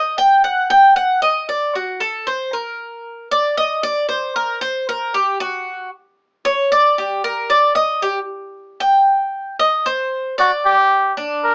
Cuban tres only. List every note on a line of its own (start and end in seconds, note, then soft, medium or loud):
0.00 0.17 D#5 medium
0.18 0.43 G5 loud
0.44 0.69 F#5 medium
0.70 0.95 G5 loud
0.96 1.21 F#5 medium
1.22 1.47 D#5 loud
1.49 1.74 D5 medium
1.75 2.00 F#4 medium
2.00 2.26 A4 medium
2.27 2.52 C5 loud
2.53 3.27 A#4 medium
3.31 3.57 D5 loud
3.57 3.83 D#5 loud
3.83 4.08 D5 loud
4.09 4.34 C5 medium
4.36 4.61 A#4 medium
4.61 4.87 C5 loud
4.89 5.14 A#4 medium
5.14 5.40 G4 medium
5.40 5.89 F#4 medium
6.45 6.70 C#5 loud
6.72 6.97 D5 loud
6.98 7.23 G4 medium
7.24 7.49 A#4 medium
7.50 7.75 D5 loud
7.75 8.01 D#5 loud
8.02 8.18 G4 medium
8.80 9.55 G5 loud
9.59 9.85 D#5 loud
9.86 10.35 C5 medium
10.38 10.75 D5 medium
11.17 11.55 D4 medium